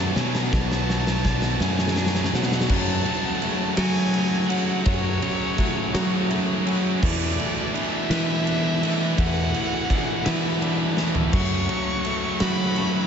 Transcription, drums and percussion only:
0.16 snare loud
0.35 snare loud
0.53 kick loud
0.53 snare loud
0.72 snare loud
0.90 snare loud
1.07 snare loud
1.25 kick medium
1.25 snare loud
1.42 snare loud
1.60 snare loud
1.79 snare medium
1.88 snare loud
1.96 snare loud
2.06 snare loud
2.15 snare loud
2.24 snare loud
2.34 snare loud
2.42 snare loud
2.52 snare loud
2.61 snare loud
2.70 kick loud
2.70 crash loud
3.06 ride medium
3.42 ride medium
3.77 snare loud
3.77 ride loud
4.14 ride medium
4.50 ride medium
4.86 kick loud
4.86 ride loud
5.22 ride medium
5.58 kick medium
5.58 ride medium
5.95 snare loud
5.95 ride loud
6.31 ride medium
6.67 ride medium
7.03 kick loud
7.03 crash loud
7.40 ride medium
7.75 ride medium
8.11 snare loud
8.11 ride loud
8.47 ride medium
8.83 ride medium
9.18 kick loud
9.18 ride loud
9.54 ride medium
9.90 kick medium
9.90 ride medium
10.26 snare loud
10.26 ride loud
10.62 ride medium
10.97 snare medium
11.15 floor tom loud
11.33 kick loud
11.33 crash loud
11.69 ride medium
12.05 ride medium
12.40 snare loud
12.40 ride loud
12.76 ride medium

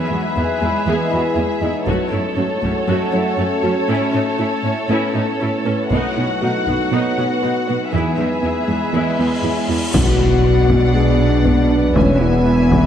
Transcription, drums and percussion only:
1.87 taiko soft
2.63 taiko soft
5.91 taiko medium
6.67 taiko soft
9.94 taiko medium
10.70 taiko medium
11.46 taiko medium
11.96 taiko medium
12.72 taiko medium

